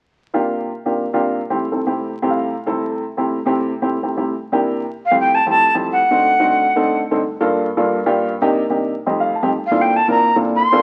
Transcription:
0.34 upright piano C3 A#3 D4 F4 G4
0.85 upright piano C3 A#3 D4 F4 G4
1.13 upright piano C3 A#3 D4 F4 G4
1.50 upright piano C3 A3 C4 E4 G4
1.71 upright piano C3 A3 C4 E4 A4
1.86 upright piano C3 A3 C4 E4 G4
2.22 upright piano C3 A3 C4 E4 G4
2.30 upright piano F5
2.66 upright piano C3 A3 C4 E4 A4
3.17 upright piano C3 A3 C4 E4 G4
3.46 upright piano C3 A3 C4 E4 G4
3.82 upright piano C3 A3 C4 E4 G4
4.03 upright piano C3 A3 C4 E4 G4
4.17 upright piano C3 A3 C4 E4 G4
4.52 upright piano C3 A#3 D4 E4 G4
5.06 flute F5
5.11 upright piano F2 A3 C4 E4 G4
5.20 flute G5
5.35 flute A5
5.46 upright piano F2 A3 C4 E4 G4, flute A5
5.75 upright piano F2 A3 C4 E4 G4
5.92 flute F#5
6.11 upright piano D3 A3 C4 D#4 F#4
6.39 upright piano D3 A3 C4 D#4 F#4
6.76 upright piano D3 A3 C4 D#4 A4
7.11 upright piano D3 A3 C4 D#4 A4
7.40 upright piano G2 A#3 D4 F4 A4
7.77 upright piano G2 A#3 D4 F4 A4
8.06 upright piano G2 A#3 D4 F4 G4
8.42 upright piano C3 A#3 D4 D#4 G4
8.70 upright piano C3 A#3 D4 D#4 G4
9.06 upright piano F2 A3 C4 D#4 G4 D#5
9.20 upright piano F5
9.35 upright piano A5
9.43 upright piano F2 A3 C4 D#4 G4
9.66 flute F5
9.71 upright piano A#2 C4 D4 E4 F4 A4
9.82 flute G5
9.96 flute A5
10.08 upright piano A#2 C4 D4 E4 F4 A#4, flute A#5
10.36 upright piano A#2 C4 D4 E4 F4 A4
10.56 flute C6
10.72 upright piano G2 A#3 C4 D4 F4 A4

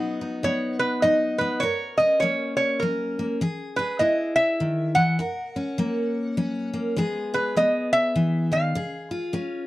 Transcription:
Already playing: steel-string acoustic guitar B2 F#3 B3 D#4 F#4
0.21 steel-string acoustic guitar D#4
0.43 steel-string acoustic guitar F#3 B3, resonator guitar played with a steel bar C#5
0.79 resonator guitar played with a steel bar B4
1.02 steel-string acoustic guitar F#3 D#4, resonator guitar played with a steel bar D#5
1.38 steel-string acoustic guitar B3, resonator guitar played with a steel bar B4
1.60 steel-string acoustic guitar F#2 A#4, resonator guitar played with a steel bar C#5
1.98 steel-string acoustic guitar C#4, resonator guitar played with a steel bar D#5
2.20 steel-string acoustic guitar F#3 A#3, resonator guitar played with a steel bar C#5
2.57 resonator guitar played with a steel bar C#5
2.80 steel-string acoustic guitar F#3 C#4, resonator guitar played with a steel bar A#4
3.19 steel-string acoustic guitar A#3
3.41 steel-string acoustic guitar E3 G#4
3.76 steel-string acoustic guitar G#4, resonator guitar played with a steel bar B4
3.99 steel-string acoustic guitar B3 E4, resonator guitar played with a steel bar D#5
4.36 resonator guitar played with a steel bar E5
4.60 steel-string acoustic guitar D#3
4.95 steel-string acoustic guitar E3, resonator guitar played with a steel bar F#5
5.19 steel-string acoustic guitar F#2 A#4
5.56 steel-string acoustic guitar C#4
5.78 steel-string acoustic guitar F#3 A#3
6.37 steel-string acoustic guitar F#3 C#4
6.74 steel-string acoustic guitar A#3
6.96 steel-string acoustic guitar E3 G#3 B3 G#4
7.34 steel-string acoustic guitar G#4, resonator guitar played with a steel bar B4
7.57 steel-string acoustic guitar G#3 B3, resonator guitar played with a steel bar D#5
7.93 resonator guitar played with a steel bar E5
8.16 steel-string acoustic guitar E3
8.52 steel-string acoustic guitar D#3, resonator guitar played with a steel bar F5
8.75 steel-string acoustic guitar C#3 G#4
9.11 steel-string acoustic guitar F4
9.33 steel-string acoustic guitar G#3 C#4

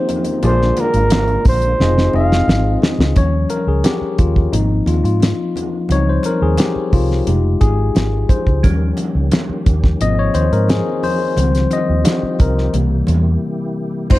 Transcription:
Already playing: tonewheel organ D#3 F3 A#3 D#4, tine electric piano A#3 C4 C#4 D#4 G4 C5, flugelhorn C5
0.09 closed hi-hat, high conga
0.25 closed hi-hat, high conga
0.42 fingered electric bass A#1, tonewheel organ D3 G#3 F4, tine electric piano A#3 D4 F4 G#4 D5, flugelhorn C5, closed hi-hat, muted conga
0.62 snare
0.77 flugelhorn A#4, closed hi-hat, muted conga
0.94 fingered electric bass G#1, closed hi-hat
1.10 snare, closed hi-hat, high conga
1.28 closed hi-hat
1.45 fingered electric bass A#1, flugelhorn C5, kick, open hi-hat, muted conga
1.62 closed hi-hat
1.80 fingered electric bass F1, tonewheel organ D#3 C4, tine electric piano C4 D#4 F4 G#4 D#5, snare, low conga
1.98 snare
2.13 fingered electric bass F1, tine electric piano C4 D#4 F4 G#4 D#5, flugelhorn F5, muted conga
2.32 snare
2.48 fingered electric bass G#1, snare, high conga
2.82 snare, high conga
2.98 fingered electric bass C#2, snare, high conga
3.16 fingered electric bass D#2, tine electric piano F3 G3 C#4 C#5, kick, closed hi-hat, muted conga
3.49 tine electric piano A#4, closed hi-hat, muted conga
3.67 fingered electric bass C#2, tine electric piano G#4
3.84 tine electric piano G4, snare, closed hi-hat, high conga
4.01 muted fingered electric bass stroke
4.18 fingered electric bass D#2, tine electric piano F4, kick, closed hi-hat
4.36 kick
4.52 fingered electric bass G#1, tine electric piano F3 A#3 C4 D#4, closed hi-hat, low conga
4.86 fingered electric bass D#2, tine electric piano F4, closed hi-hat, muted conga
5.04 fingered electric bass G#2, tine electric piano F4, closed hi-hat
5.20 snare, closed hi-hat, high conga
5.56 closed hi-hat, high conga
5.89 fingered electric bass C#2, tine electric piano F3 G3 C4 D#4 C#5, closed hi-hat, muted conga
6.09 tine electric piano C5
6.23 tine electric piano A#4, closed hi-hat, muted conga
6.42 fingered electric bass D#2, tine electric piano G#4
6.57 tine electric piano G4, snare, closed hi-hat, high conga
6.76 muted fingered electric bass stroke
6.93 fingered electric bass C2, tine electric piano F4, kick, open hi-hat
7.11 snare
7.27 fingered electric bass F1, tine electric piano G#3 D#4 G4, closed hi-hat, low conga
7.61 fingered electric bass G#1, tine electric piano G#4, kick, closed hi-hat, muted conga
7.95 fingered electric bass G#1, snare, closed hi-hat, high conga
8.29 tine electric piano C5, kick, closed hi-hat, high conga
8.46 fingered electric bass C#2, kick
8.63 fingered electric bass D#2, tonewheel organ D#3 A#3 C#4 G4, tine electric piano F3 G3 C#4, kick, closed hi-hat, muted conga
8.97 closed hi-hat, muted conga
9.15 fingered electric bass C#2
9.32 snare, closed hi-hat, high conga
9.49 muted fingered electric bass stroke
9.66 fingered electric bass D#2, kick, closed hi-hat, muted conga
9.84 kick, snare
10.00 fingered electric bass G#1, tine electric piano F3 A#3 C4 D#5, tonewheel organ C4 F4 G#4, closed hi-hat, low conga
10.19 tine electric piano C#5
10.34 fingered electric bass D#2, tine electric piano C5, closed hi-hat, muted conga
10.52 fingered electric bass G#2, tine electric piano A#4, closed hi-hat
10.68 tine electric piano G#4, snare, closed hi-hat, high conga
11.03 tine electric piano C5, open hi-hat, high conga
11.37 fingered electric bass C#2, tine electric piano D#3 F3 G3 C4, tonewheel organ G4, closed hi-hat, muted conga
11.55 snare, closed hi-hat
11.71 tine electric piano D#5, closed hi-hat, muted conga
11.89 fingered electric bass D#2
12.05 snare, closed hi-hat, high conga
12.23 muted fingered electric bass stroke
12.39 fingered electric bass C2, tine electric piano A#4, kick, closed hi-hat, muted conga
12.58 snare
12.73 fingered electric bass C2, tonewheel organ C3 A#3 E4, tine electric piano E3 G3 A#3, closed hi-hat, low conga
13.07 fingered electric bass E2, closed hi-hat, muted conga, low conga
14.10 fingered electric bass F1, tonewheel organ C3 G#3 D#4 F4, tine electric piano G#3 C4 D#4 F4 C5, flugelhorn C5, kick, crash, muted conga

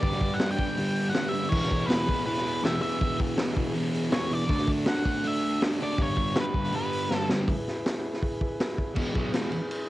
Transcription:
Already playing: lead electric guitar D5
0.00 distorted electric guitar G2 D3 G3, transistor combo organ G4 B4 D5, kick, open hi-hat
0.12 snare
0.20 kick, open hi-hat
0.34 lead electric guitar F#5
0.39 distorted electric guitar G2 D3 G3, snare, open hi-hat
0.51 lead electric guitar G5
0.57 distorted electric guitar G2 D3 G3, kick, open hi-hat
0.77 distorted electric guitar G2 D3 G3, open hi-hat
0.96 open hi-hat
1.10 distorted electric guitar G2 D3 G3, lead electric guitar F#5
1.14 snare, open hi-hat
1.29 distorted electric guitar G2, lead electric guitar E5
1.33 distorted electric guitar D3 G3, open hi-hat
1.49 distorted electric guitar E2 B2 E3, transistor combo organ E4 G#4 B4, lead electric guitar C#5, kick, crash
1.63 snare
1.71 kick, open hi-hat
1.86 distorted electric guitar E2 B2 E3, lead electric guitar B4, open hi-hat
1.90 snare
2.07 distorted electric guitar E2 B2 E3, kick, open hi-hat
2.24 distorted electric guitar E2 B2 E3, lead electric guitar B4, open hi-hat
2.37 snare
2.47 open hi-hat
2.62 distorted electric guitar E2 B2 E3, lead electric guitar E5, snare, open hi-hat
2.81 distorted electric guitar E2 B2 E3, lead electric guitar E5, open hi-hat
2.99 distorted electric guitar E2 B2 E3, kick, open hi-hat
3.20 kick, open hi-hat
3.36 distorted electric guitar E2 B2 E3, snare, open hi-hat
3.56 distorted electric guitar E2 B2 E3, kick, open hi-hat
3.73 distorted electric guitar E2 B2 E3, open hi-hat
3.94 open hi-hat
4.10 distorted electric guitar E2 B2 E3, lead electric guitar C#5, snare, open hi-hat
4.30 distorted electric guitar E2 B2 E3, lead electric guitar D5, open hi-hat
4.48 distorted electric guitar D3 A3 D4, transistor combo organ D4 F#4 A4, kick, open hi-hat
4.58 snare
4.67 kick, open hi-hat
4.85 distorted electric guitar D3 A3 D4, lead electric guitar F#5, snare, open hi-hat
5.04 distorted electric guitar D3 A3 D4, kick, open hi-hat
5.23 distorted electric guitar D3 A3 D4, lead electric guitar E5, open hi-hat
5.43 open hi-hat
5.59 distorted electric guitar D3 A3 D4, snare, open hi-hat
5.77 distorted electric guitar D3 A3 D4, open hi-hat
5.83 lead electric guitar D5
5.98 distorted electric guitar G2 D3 G3, transistor combo organ D4 G4 B4, kick, open hi-hat
6.03 lead electric guitar C#5
6.16 kick, open hi-hat
6.35 distorted electric guitar G2 D3 G3, snare, open hi-hat
6.40 lead electric guitar B4
6.54 distorted electric guitar G2 D3 G3, kick, open hi-hat
6.72 distorted electric guitar G2 D3 G3, open hi-hat
6.76 lead electric guitar B4
6.92 open hi-hat
7.09 distorted electric guitar G2 D3 G3, snare
7.15 lead electric guitar A4
7.29 distorted electric guitar G2 D3 G3, snare
7.47 transistor combo organ E4 G#4 B4, kick, open hi-hat
7.68 snare
7.86 snare, open hi-hat
8.14 snare
8.23 kick, open hi-hat
8.41 kick
8.60 snare, open hi-hat
8.78 kick
8.95 distorted electric guitar E2 B2 E3, transistor combo organ E4, kick, crash
9.00 transistor combo organ G#4 B4
9.14 distorted electric guitar B2 F#3 B3, kick, ride
9.32 distorted electric guitar E2 B2 E3, snare, ride
9.52 muted distorted electric guitar stroke, ride
9.71 ride

